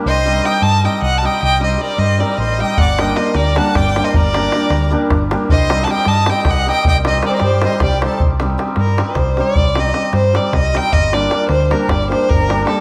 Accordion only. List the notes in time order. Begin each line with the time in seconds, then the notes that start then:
0.07 C5
0.45 D#5
0.64 D#5
0.85 D#5
1.03 D#5
1.19 F#5
1.25 D#5
1.44 D#5
1.66 C5
1.82 A#4
2.00 C5
2.22 A#4
2.40 C5
2.62 D#5
2.81 D5
3.00 D#5
3.17 C5
3.36 A#4
3.58 F#5
3.76 D5
4.03 C5
4.15 A#4
5.51 C5
5.84 F#5
5.89 D#5
6.07 D#5
6.30 D#5
6.47 D#5
6.68 D#5
6.89 D#5
7.09 C5
7.25 A4 A#4
7.34 A#4
7.43 G4
7.65 C5
7.83 G4
8.06 A4